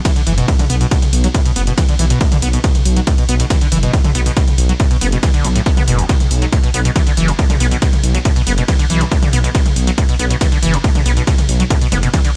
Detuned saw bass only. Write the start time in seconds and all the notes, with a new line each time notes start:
0.27 F#1
0.70 B1
1.13 B1
1.56 F#1
1.99 B1
2.42 B1
2.86 B1
3.29 B1
3.72 F#1
4.15 B1
4.58 B1
5.01 F#1
5.45 B1
5.88 F#1
6.31 B1
6.74 B1
7.17 F#1
7.60 B1
8.04 B1
8.47 F#1
8.90 B1
9.33 B1
9.76 B1
10.19 B1
10.63 F#1
11.06 B1
11.49 B1
11.92 F#1